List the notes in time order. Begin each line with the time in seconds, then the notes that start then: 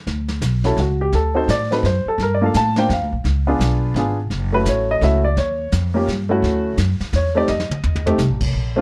0.07 D2, brush sweep, snare
0.28 snare
0.41 B1, snare, hi-hat pedal
0.64 C#4 E4 F#4 A4, snare
0.76 C#2 F#4, snare
1.01 G4
1.13 D2 A4, brush sweep, snare
1.35 C4 D#4 F#4 A4 C5
1.48 A2 D5, snare, hi-hat pedal
1.71 C4 D#4 F#4 A4 B4, snare
1.83 F#2 C5, snare
2.06 A4, muted upright bass stroke
2.18 G2, brush sweep, snare
2.23 A#4
2.35 D5
2.41 A#3 D4 F4 A4
2.46 F5
2.54 A2 A5, snare, hi-hat pedal
2.76 A#3 D4 F4 C5 G5, snare
2.89 F2 F5, snare
3.01 D2
3.12 A#1
3.24 C#2, brush sweep, snare
3.47 B3 D4 F4 G#4
3.59 B1, snare, hi-hat pedal
3.94 G#1 B3 D4 F4, snare
3.98 G#4
4.30 F#1, brush sweep, snare
4.52 A3 C#4 E4 F#4 B4
4.65 A1 C#5, snare, hi-hat pedal
4.91 D#5
5.01 C#2 A3 C#4 E4 F#4 E5, snare
5.24 D5
5.36 D#2 C#5, brush sweep, snare
5.72 F2, snare, hi-hat pedal
5.94 A#3 C#4 F4 G4
6.07 G2, snare
6.29 A3 C#4 E4 F#4
6.42 D2, brush sweep, snare
6.77 F#2, snare, hi-hat pedal
7.00 muted upright bass stroke, snare
7.13 E2 C#5, snare
7.35 A3 C4 D#4 G4 D5
7.48 F2 D#5, snare
7.60 snare
7.69 muted upright bass stroke, mid tom
7.84 D#2, floor tom
7.96 floor tom
8.06 A3 C4 D#4 G4, floor tom
8.18 C2, snare, hi-hat pedal
8.30 A1
8.40 F1, kick, crash
8.53 A#1
8.76 A3 C4 D4 F4